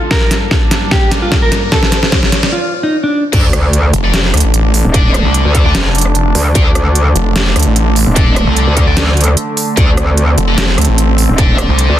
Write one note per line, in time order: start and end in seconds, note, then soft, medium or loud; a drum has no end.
0.00 2.49 A4 medium
0.00 riser medium
0.11 2.50 G2 medium
0.11 2.50 G3 medium
0.11 2.50 A#3 medium
0.11 2.50 D4 medium
0.11 0.38 A#4 loud
0.11 kick loud
0.11 snare medium
0.31 snare medium
0.31 closed hi-hat medium
0.51 kick loud
0.51 snare medium
0.71 snare medium
0.71 closed hi-hat medium
0.91 1.11 G4 medium
0.91 kick loud
0.91 snare medium
1.11 snare medium
1.11 closed hi-hat medium
1.22 1.35 F4 medium
1.32 kick loud
1.32 snare medium
1.42 1.62 A#4 medium
1.52 snare medium
1.52 closed hi-hat medium
1.72 1.99 A4 loud
1.72 kick medium
1.72 snare medium
1.83 snare medium
1.92 snare medium
1.92 closed hi-hat medium
2.03 snare medium
2.12 kick loud
2.12 snare medium
2.23 snare medium
2.32 snare loud
2.32 closed hi-hat medium
2.43 snare medium
2.52 2.72 F4 medium
2.83 2.96 D#4 medium
3.03 3.23 D4 loud
3.33 3.92 D2 medium
3.33 12.00 D3 medium
3.33 12.00 A3 medium
3.33 3.45 D4 medium
3.33 9.76 D4 medium
3.33 3.45 A4 medium
3.33 3.45 D5 medium
3.33 kick loud
3.33 closed hi-hat medium
3.33 crash loud
3.33 sub drop medium
3.53 cross-stick medium
3.53 closed hi-hat medium
3.73 closed hi-hat medium
3.93 4.32 F1 loud
3.93 closed hi-hat medium
4.04 4.15 D4 medium
4.04 4.15 A4 medium
4.04 4.15 D5 loud
4.14 snare loud
4.14 closed hi-hat medium
4.34 4.43 D2 medium
4.34 cross-stick soft
4.34 closed hi-hat soft
4.37 closed hi-hat medium
4.40 closed hi-hat medium
4.44 4.83 A1 medium
4.54 closed hi-hat medium
4.74 open hi-hat medium
4.85 5.23 D#1 loud
4.94 5.63 D4 medium
4.94 5.63 A4 medium
4.94 5.63 D5 medium
4.94 kick loud
4.94 closed hi-hat medium
5.14 cross-stick medium
5.14 closed hi-hat medium
5.25 5.43 C2 loud
5.34 closed hi-hat medium
5.45 5.64 D2 loud
5.55 kick medium
5.55 closed hi-hat medium
5.65 5.73 D2 loud
5.65 5.76 D4 medium
5.65 5.76 A4 medium
5.65 5.76 D5 loud
5.75 6.34 F1 loud
5.75 snare loud
5.75 closed hi-hat medium
5.95 closed hi-hat medium
5.98 closed hi-hat medium
6.01 closed hi-hat medium
6.06 cross-stick medium
6.15 closed hi-hat medium
6.35 6.54 D2 loud
6.35 open hi-hat medium
6.55 7.14 D2 loud
6.55 6.67 D4 medium
6.55 6.67 A4 medium
6.55 6.67 D5 medium
6.55 kick loud
6.55 closed hi-hat medium
6.75 cross-stick medium
6.75 closed hi-hat medium
6.95 closed hi-hat medium
7.16 7.54 F1 loud
7.16 closed hi-hat medium
7.36 snare loud
7.36 closed hi-hat medium
7.56 7.65 D2 medium
7.56 cross-stick medium
7.56 closed hi-hat medium
7.59 closed hi-hat medium
7.63 closed hi-hat medium
7.67 8.05 A1 loud
7.76 closed hi-hat medium
7.96 open hi-hat medium
8.07 8.45 D#1 loud
8.16 8.85 D4 medium
8.16 8.85 A4 medium
8.16 8.85 D5 medium
8.16 kick loud
8.16 closed hi-hat medium
8.36 cross-stick medium
8.36 closed hi-hat medium
8.47 8.66 C2 loud
8.57 closed hi-hat medium
8.67 8.86 D2 loud
8.77 kick medium
8.77 closed hi-hat medium
8.87 8.95 D2 loud
8.87 8.98 D4 medium
8.87 8.98 A4 medium
8.87 8.98 D5 loud
8.97 9.36 D2 loud
8.97 snare loud
8.97 closed hi-hat medium
9.17 closed hi-hat soft
9.21 closed hi-hat medium
9.24 cross-stick medium
9.24 closed hi-hat medium
9.37 closed hi-hat medium
9.57 open hi-hat medium
9.77 10.36 D2 loud
9.77 12.00 C4 medium
9.77 9.90 D4 medium
9.77 9.90 A4 medium
9.77 9.90 D5 medium
9.77 kick loud
9.77 closed hi-hat medium
9.97 cross-stick medium
9.97 closed hi-hat soft
10.17 closed hi-hat medium
10.38 10.76 F1 loud
10.38 closed hi-hat medium
10.48 10.60 D4 medium
10.48 10.60 A4 medium
10.48 10.60 D5 loud
10.58 snare loud
10.58 closed hi-hat medium
10.78 10.87 D2 loud
10.78 cross-stick medium
10.78 closed hi-hat soft
10.81 closed hi-hat medium
10.85 closed hi-hat medium
10.89 11.27 A1 loud
10.98 closed hi-hat medium
11.18 open hi-hat medium
11.29 11.68 D#1 loud
11.38 12.00 D4 medium
11.38 12.00 A4 medium
11.38 12.00 D5 medium
11.38 kick loud
11.38 closed hi-hat medium
11.58 cross-stick medium
11.58 closed hi-hat medium
11.69 11.88 C2 loud
11.79 closed hi-hat medium
11.89 12.00 D2 loud